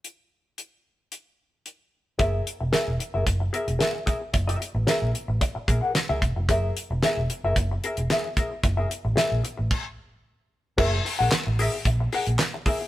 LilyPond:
<<
  \new Staff \with { instrumentName = "Hollow-body jazz guitar" } { \time 4/4 \key fis \mixolydian \tempo 4 = 112 r1 | <gis' ais' e''>8 r8 <gis' ais' e''>16 r8 <gis' ais' e''>16 r8 <gis' ais' e''>16 r16 <gis' ais' e''>16 r16 <gis' ais' e''>16 r16 | r16 <gis' ais' e''>16 r8 <gis' ais' e''>8 r4 <gis' ais' e''>16 <gis' ais' fis''>16 r16 <gis' ais' e''>16 r8 | <gis' ais' e''>8 r8 <gis' ais' e''>16 r8 <gis' ais' e''>16 r8 <gis' ais' e''>16 r16 <gis' ais' e''>16 r16 <gis' ais' e''>16 r16 |
r16 <gis' ais' e''>16 r8 <gis' ais' e''>8 r2 r8 | <gis' ais' e''>16 r8 <gis' ais' fis''>16 r8 <gis' ais' e''>16 r8. <gis' ais' fis''>16 r8. <gis' ais' e''>16 r16 | }
  \new Staff \with { instrumentName = "Fingered electric bass" } { \clef bass \time 4/4 \key fis \mixolydian r1 | fis,,8 r16 e,,16 r16 e,,16 r16 fis,,16 fis,,8 r16 e,,16 r4 | fis,,8 r16 a,,16 r16 ais,,16 r16 a,,16 r8 ais,,16 r8 cis,16 e,,16 eis,,16 | fis,,8 r16 e,,16 r16 e,,16 r16 fis,,16 fis,,8 r16 e,,16 r4 |
fis,,8 r16 a,,16 r16 ais,,16 r16 a,,16 r2 | fis,,8 r16 ais,,16 r16 a,,8 r16 ais,,8 r16 ais,,16 r4 | }
  \new DrumStaff \with { instrumentName = "Drums" } \drummode { \time 4/4 hh4 hh4 hh4 hh4 | <hh bd>8 hh8 <hh sn>8 hh8 <hh bd>8 hh16 hh16 <hh sn>8 <hh bd>8 | <hh bd>16 hh16 hh8 <hh sn>8 hh8 <hh bd>8 <hh bd>8 <hh sn>8 <hh bd>8 | <hh bd>8 hh8 <hh sn>8 hh8 <hh bd>8 hh16 hh16 <hh sn>8 <hh bd>8 |
<hh bd>8 hh8 <hh sn>8 hh8 <cymc bd>4 r4 | <cymc bd>8 hho8 <hc hh sn>8 hho8 <hh bd>8 hho16 hh16 <hc hh sn>8 <hho bd>8 | }
>>